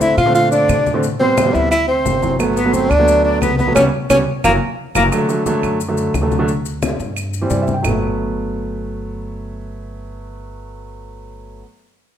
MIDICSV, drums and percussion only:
0, 0, Header, 1, 2, 480
1, 0, Start_track
1, 0, Key_signature, 1, "major"
1, 0, Tempo, 340909
1, 1456, Time_signature, 4, 2, 24, 8
1, 17145, End_track
2, 0, Start_track
2, 0, Title_t, "Drums"
2, 14, Note_on_c, 9, 63, 57
2, 16, Note_on_c, 9, 70, 66
2, 155, Note_off_c, 9, 63, 0
2, 157, Note_off_c, 9, 70, 0
2, 254, Note_on_c, 9, 70, 31
2, 256, Note_on_c, 9, 75, 61
2, 257, Note_on_c, 9, 63, 30
2, 395, Note_off_c, 9, 70, 0
2, 397, Note_off_c, 9, 75, 0
2, 398, Note_off_c, 9, 63, 0
2, 493, Note_on_c, 9, 70, 63
2, 634, Note_off_c, 9, 70, 0
2, 733, Note_on_c, 9, 70, 54
2, 736, Note_on_c, 9, 63, 26
2, 874, Note_off_c, 9, 70, 0
2, 877, Note_off_c, 9, 63, 0
2, 971, Note_on_c, 9, 70, 69
2, 977, Note_on_c, 9, 63, 86
2, 978, Note_on_c, 9, 75, 58
2, 1111, Note_off_c, 9, 70, 0
2, 1118, Note_off_c, 9, 63, 0
2, 1118, Note_off_c, 9, 75, 0
2, 1216, Note_on_c, 9, 70, 28
2, 1217, Note_on_c, 9, 63, 73
2, 1357, Note_off_c, 9, 70, 0
2, 1358, Note_off_c, 9, 63, 0
2, 1453, Note_on_c, 9, 70, 68
2, 1457, Note_on_c, 9, 63, 30
2, 1593, Note_off_c, 9, 70, 0
2, 1597, Note_off_c, 9, 63, 0
2, 1694, Note_on_c, 9, 63, 33
2, 1834, Note_off_c, 9, 63, 0
2, 1937, Note_on_c, 9, 70, 73
2, 1938, Note_on_c, 9, 63, 95
2, 1939, Note_on_c, 9, 75, 64
2, 2078, Note_off_c, 9, 63, 0
2, 2078, Note_off_c, 9, 70, 0
2, 2080, Note_off_c, 9, 75, 0
2, 2176, Note_on_c, 9, 63, 31
2, 2181, Note_on_c, 9, 70, 28
2, 2317, Note_off_c, 9, 63, 0
2, 2322, Note_off_c, 9, 70, 0
2, 2419, Note_on_c, 9, 75, 61
2, 2422, Note_on_c, 9, 70, 67
2, 2560, Note_off_c, 9, 75, 0
2, 2563, Note_off_c, 9, 70, 0
2, 2652, Note_on_c, 9, 63, 29
2, 2793, Note_off_c, 9, 63, 0
2, 2895, Note_on_c, 9, 63, 88
2, 2899, Note_on_c, 9, 70, 65
2, 3036, Note_off_c, 9, 63, 0
2, 3040, Note_off_c, 9, 70, 0
2, 3131, Note_on_c, 9, 63, 78
2, 3138, Note_on_c, 9, 70, 29
2, 3271, Note_off_c, 9, 63, 0
2, 3279, Note_off_c, 9, 70, 0
2, 3369, Note_on_c, 9, 63, 32
2, 3375, Note_on_c, 9, 70, 69
2, 3379, Note_on_c, 9, 75, 66
2, 3510, Note_off_c, 9, 63, 0
2, 3516, Note_off_c, 9, 70, 0
2, 3519, Note_off_c, 9, 75, 0
2, 3613, Note_on_c, 9, 63, 30
2, 3618, Note_on_c, 9, 70, 49
2, 3754, Note_off_c, 9, 63, 0
2, 3759, Note_off_c, 9, 70, 0
2, 3848, Note_on_c, 9, 63, 55
2, 3855, Note_on_c, 9, 70, 66
2, 3989, Note_off_c, 9, 63, 0
2, 3996, Note_off_c, 9, 70, 0
2, 4094, Note_on_c, 9, 63, 33
2, 4094, Note_on_c, 9, 75, 63
2, 4102, Note_on_c, 9, 70, 30
2, 4235, Note_off_c, 9, 63, 0
2, 4235, Note_off_c, 9, 75, 0
2, 4243, Note_off_c, 9, 70, 0
2, 4337, Note_on_c, 9, 70, 66
2, 4478, Note_off_c, 9, 70, 0
2, 4573, Note_on_c, 9, 63, 29
2, 4714, Note_off_c, 9, 63, 0
2, 4813, Note_on_c, 9, 63, 86
2, 4813, Note_on_c, 9, 75, 55
2, 4821, Note_on_c, 9, 70, 68
2, 4953, Note_off_c, 9, 75, 0
2, 4954, Note_off_c, 9, 63, 0
2, 4962, Note_off_c, 9, 70, 0
2, 5056, Note_on_c, 9, 63, 80
2, 5058, Note_on_c, 9, 70, 29
2, 5197, Note_off_c, 9, 63, 0
2, 5199, Note_off_c, 9, 70, 0
2, 5292, Note_on_c, 9, 63, 94
2, 5292, Note_on_c, 9, 75, 84
2, 5301, Note_on_c, 9, 70, 98
2, 5433, Note_off_c, 9, 63, 0
2, 5433, Note_off_c, 9, 75, 0
2, 5442, Note_off_c, 9, 70, 0
2, 5774, Note_on_c, 9, 63, 84
2, 5774, Note_on_c, 9, 75, 90
2, 5775, Note_on_c, 9, 70, 91
2, 5914, Note_off_c, 9, 75, 0
2, 5915, Note_off_c, 9, 63, 0
2, 5916, Note_off_c, 9, 70, 0
2, 6254, Note_on_c, 9, 63, 88
2, 6256, Note_on_c, 9, 75, 93
2, 6258, Note_on_c, 9, 70, 95
2, 6395, Note_off_c, 9, 63, 0
2, 6396, Note_off_c, 9, 75, 0
2, 6399, Note_off_c, 9, 70, 0
2, 6973, Note_on_c, 9, 63, 83
2, 6974, Note_on_c, 9, 75, 93
2, 6977, Note_on_c, 9, 70, 87
2, 7114, Note_off_c, 9, 63, 0
2, 7115, Note_off_c, 9, 75, 0
2, 7118, Note_off_c, 9, 70, 0
2, 7208, Note_on_c, 9, 63, 32
2, 7214, Note_on_c, 9, 70, 65
2, 7215, Note_on_c, 9, 75, 64
2, 7349, Note_off_c, 9, 63, 0
2, 7355, Note_off_c, 9, 70, 0
2, 7356, Note_off_c, 9, 75, 0
2, 7451, Note_on_c, 9, 63, 28
2, 7451, Note_on_c, 9, 70, 53
2, 7592, Note_off_c, 9, 63, 0
2, 7592, Note_off_c, 9, 70, 0
2, 7686, Note_on_c, 9, 63, 55
2, 7692, Note_on_c, 9, 70, 67
2, 7827, Note_off_c, 9, 63, 0
2, 7833, Note_off_c, 9, 70, 0
2, 7928, Note_on_c, 9, 63, 31
2, 7931, Note_on_c, 9, 75, 61
2, 7938, Note_on_c, 9, 70, 29
2, 8069, Note_off_c, 9, 63, 0
2, 8072, Note_off_c, 9, 75, 0
2, 8079, Note_off_c, 9, 70, 0
2, 8170, Note_on_c, 9, 63, 32
2, 8175, Note_on_c, 9, 70, 66
2, 8310, Note_off_c, 9, 63, 0
2, 8316, Note_off_c, 9, 70, 0
2, 8407, Note_on_c, 9, 63, 30
2, 8413, Note_on_c, 9, 70, 52
2, 8548, Note_off_c, 9, 63, 0
2, 8554, Note_off_c, 9, 70, 0
2, 8650, Note_on_c, 9, 63, 84
2, 8650, Note_on_c, 9, 75, 52
2, 8654, Note_on_c, 9, 70, 64
2, 8791, Note_off_c, 9, 63, 0
2, 8791, Note_off_c, 9, 75, 0
2, 8794, Note_off_c, 9, 70, 0
2, 8892, Note_on_c, 9, 70, 27
2, 8893, Note_on_c, 9, 63, 81
2, 9033, Note_off_c, 9, 70, 0
2, 9034, Note_off_c, 9, 63, 0
2, 9127, Note_on_c, 9, 70, 65
2, 9133, Note_on_c, 9, 63, 30
2, 9268, Note_off_c, 9, 70, 0
2, 9274, Note_off_c, 9, 63, 0
2, 9371, Note_on_c, 9, 70, 56
2, 9372, Note_on_c, 9, 63, 29
2, 9512, Note_off_c, 9, 70, 0
2, 9513, Note_off_c, 9, 63, 0
2, 9610, Note_on_c, 9, 63, 83
2, 9610, Note_on_c, 9, 70, 67
2, 9610, Note_on_c, 9, 75, 55
2, 9751, Note_off_c, 9, 63, 0
2, 9751, Note_off_c, 9, 70, 0
2, 9751, Note_off_c, 9, 75, 0
2, 9848, Note_on_c, 9, 63, 31
2, 9853, Note_on_c, 9, 70, 29
2, 9989, Note_off_c, 9, 63, 0
2, 9994, Note_off_c, 9, 70, 0
2, 10088, Note_on_c, 9, 75, 62
2, 10090, Note_on_c, 9, 63, 31
2, 10094, Note_on_c, 9, 70, 68
2, 10229, Note_off_c, 9, 75, 0
2, 10231, Note_off_c, 9, 63, 0
2, 10235, Note_off_c, 9, 70, 0
2, 10329, Note_on_c, 9, 70, 54
2, 10331, Note_on_c, 9, 63, 29
2, 10469, Note_off_c, 9, 70, 0
2, 10471, Note_off_c, 9, 63, 0
2, 10562, Note_on_c, 9, 70, 66
2, 10567, Note_on_c, 9, 63, 85
2, 10703, Note_off_c, 9, 70, 0
2, 10708, Note_off_c, 9, 63, 0
2, 10807, Note_on_c, 9, 70, 28
2, 10810, Note_on_c, 9, 63, 74
2, 10948, Note_off_c, 9, 70, 0
2, 10951, Note_off_c, 9, 63, 0
2, 11044, Note_on_c, 9, 70, 86
2, 11046, Note_on_c, 9, 75, 90
2, 11047, Note_on_c, 9, 64, 87
2, 11185, Note_off_c, 9, 70, 0
2, 11187, Note_off_c, 9, 75, 0
2, 11188, Note_off_c, 9, 64, 0
2, 17145, End_track
0, 0, End_of_file